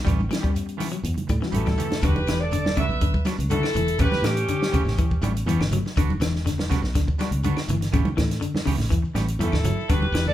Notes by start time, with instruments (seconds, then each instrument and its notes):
0.04 fingered electric bass A1, clean electric guitar E3 G3 B3 C#4 G4, kick, closed hi-hat, low conga, claves, shekere
0.19 high conga, shekere
0.29 clean electric guitar E3, reed electric piano G3 B3 C#4 E4, muted clean electric guitar stroke, snare, closed hi-hat, high conga, claves, shekere
0.41 reed electric piano G3 B3 C#4 G4, clean electric guitar G3 B3 C#4 G4, kick, closed hi-hat, shekere
0.53 muted clean electric guitar stroke, closed hi-hat, shekere
0.66 muted clean electric guitar stroke, closed hi-hat, shekere
0.77 clean electric guitar E3 B3 C#4 G4, open hi-hat, high conga, claves, shekere
0.90 clean electric guitar F#3, muted clean electric guitar stroke, closed hi-hat, shekere
1.03 fingered electric bass E2, closed hi-hat, shekere
1.14 muted clean electric guitar stroke, closed hi-hat, high conga, low conga, shekere
1.27 fingered electric bass A2, clean electric guitar G3, muted clean electric guitar stroke, kick, closed hi-hat, high conga, claves, shekere
1.40 clean electric guitar E3, reed electric piano G3 B3 C#4 F#4, muted clean electric guitar stroke, snare, high conga, shekere
1.51 fingered electric bass A1, clean electric guitar E3 B3 C#4 G4, trumpet E4, horn section A4, closed hi-hat, high conga, shekere
1.66 clean electric guitar G3, kick, snare, closed hi-hat, low conga, claves, shekere
1.78 clean electric guitar E3 B3 C#4 G4, closed hi-hat, low conga, shekere
1.90 muted clean electric guitar stroke, muted fingered electric bass stroke, snare, closed hi-hat, low conga, shekere
2.02 fingered electric bass E1, clean electric guitar D3 G3 B3 D4 F#4, trumpet G4, horn section B4, kick, closed hi-hat, high conga, claves, shekere
2.16 high conga, shekere
2.27 fingered electric bass E1, clean electric guitar E3, muted clean electric guitar stroke, snare, closed hi-hat, claves, shekere
2.40 trumpet A4, horn section D5, shekere
2.51 clean electric guitar D3, muted clean electric guitar stroke, closed hi-hat, high conga, shekere
2.64 muted clean electric guitar stroke, snare, high conga, shekere
2.76 clean electric guitar C#3 G3 B3 D4 F#4, trumpet B4, horn section E5, kick, closed hi-hat, low conga, claves, shekere
2.88 fingered electric bass B1, muted clean electric guitar stroke, shekere
3.01 clean electric guitar D3, kick, closed hi-hat, high conga, shekere
3.13 muted clean electric guitar stroke, kick, high conga, shekere
3.25 clean electric guitar F#3 G3 B3 D4 F#4, snare, closed hi-hat, high conga, claves, shekere
3.37 fingered electric bass C#2, muted clean electric guitar stroke, closed hi-hat, shekere
3.49 clean electric guitar D3 G3 B3 D4 F#4, trumpet E4, horn section A4, closed hi-hat, high conga, shekere
3.62 snare, claves, shekere
3.73 fingered electric bass E1, clean electric guitar E3, muted clean electric guitar stroke, closed hi-hat, low conga, shekere
3.86 muted clean electric guitar stroke, closed hi-hat, shekere
3.98 fingered electric bass A1, clean electric guitar C#3 E3 B3 C#4 G4, horn section B4, kick, closed hi-hat, high conga, claves, shekere
4.02 trumpet G4
4.12 snare, high conga, shekere
4.22 fingered electric bass A2, clean electric guitar E3, horn section G4, muted clean electric guitar stroke, snare, closed hi-hat, claves, shekere
4.28 trumpet C#4
4.37 closed hi-hat, shekere
4.48 clean electric guitar D3, muted clean electric guitar stroke, closed hi-hat, high conga, shekere
4.61 muted clean electric guitar stroke, snare, high conga, shekere
4.72 clean electric guitar C#3 E3 B3 C#4 G4, kick, closed hi-hat, low conga, claves, shekere
4.85 fingered electric bass A1, muted clean electric guitar stroke, snare, shekere
4.97 clean electric guitar E3, kick, closed hi-hat, high conga, shekere
5.10 muted clean electric guitar stroke, muted fingered electric bass stroke, kick, shekere
5.21 fingered electric bass A1, clean electric guitar E3 G3 B3 C#4 G4, closed hi-hat, high conga, claves, shekere
5.35 muted clean electric guitar stroke, closed hi-hat, shekere
5.46 fingered electric bass E2, clean electric guitar E3 B3 C#4 G4, closed hi-hat, high conga, shekere
5.59 fingered electric bass G1, snare, claves, shekere
5.71 fingered electric bass G1, clean electric guitar F#3, muted clean electric guitar stroke, closed hi-hat, low conga, shekere
5.86 muted clean electric guitar stroke, snare, shekere
5.96 fingered electric bass E1, clean electric guitar D3 B3 D4 F#4, muted clean electric guitar stroke, kick, closed hi-hat, high conga, claves, shekere
6.10 high conga, shekere
6.20 fingered electric bass E1, clean electric guitar E3, muted clean electric guitar stroke, snare, closed hi-hat, claves, shekere
6.33 snare, shekere
6.45 clean electric guitar D3, muted clean electric guitar stroke, snare, closed hi-hat, high conga, shekere
6.58 muted clean electric guitar stroke, snare, high conga, shekere
6.69 clean electric guitar C#3 G3 B3 D4 F#4, kick, snare, closed hi-hat, low conga, claves, shekere
6.82 fingered electric bass B1, muted clean electric guitar stroke, snare, shekere
6.94 clean electric guitar D3, kick, snare, closed hi-hat, high conga, shekere
7.08 muted clean electric guitar stroke, kick, shekere
7.18 clean electric guitar G3 B3 D4 F#4, snare, closed hi-hat, high conga, claves, shekere
7.31 fingered electric bass C#2, muted clean electric guitar stroke, closed hi-hat, shekere
7.43 clean electric guitar D3 G3 B3 D4 F#4, closed hi-hat, high conga, shekere
7.57 snare, claves, shekere
7.68 fingered electric bass G1, clean electric guitar E3, muted clean electric guitar stroke, closed hi-hat, low conga, shekere
7.81 muted clean electric guitar stroke, snare, closed hi-hat, shekere
7.92 fingered electric bass A1, clean electric guitar C#3 E3 B3 C#4 G4, kick, closed hi-hat, claves, shekere
8.05 muted fingered electric bass stroke, high conga, shekere
8.16 fingered electric bass A2, clean electric guitar E3, muted clean electric guitar stroke, kick, snare, closed hi-hat, claves, shekere
8.31 snare, closed hi-hat, shekere
8.41 clean electric guitar D3, muted clean electric guitar stroke, closed hi-hat, high conga, shekere
8.55 muted clean electric guitar stroke, snare, high conga, shekere
8.66 clean electric guitar C#3 E3 B3 C#4 G4, kick, open hi-hat, low conga, claves, shekere
8.78 fingered electric bass A1, muted clean electric guitar stroke, snare, shekere
8.90 clean electric guitar E3, kick, closed hi-hat, shekere
9.02 muted clean electric guitar stroke, muted fingered electric bass stroke, shekere
9.14 fingered electric bass A1, clean electric guitar E3 G3 B3 C#4 G4, snare, closed hi-hat, high conga, claves, shekere
9.28 muted clean electric guitar stroke, closed hi-hat, shekere
9.39 fingered electric bass E2, clean electric guitar E3 B3 C#4 G4, horn section A4, closed hi-hat, high conga, shekere
9.44 trumpet E4
9.52 fingered electric bass G1, kick, snare, claves, shekere
9.64 fingered electric bass G1, clean electric guitar F#3, muted clean electric guitar stroke, closed hi-hat, low conga, shekere
9.77 muted clean electric guitar stroke, shekere
9.89 fingered electric bass E1, clean electric guitar D3 G3 B3 D4 F#4, trumpet G4, horn section B4, kick, closed hi-hat, high conga, claves, shekere
10.02 high conga, shekere
10.12 fingered electric bass E1, clean electric guitar E3, muted clean electric guitar stroke, snare, closed hi-hat, claves, shekere
10.26 trumpet A4, horn section D5, low conga, shekere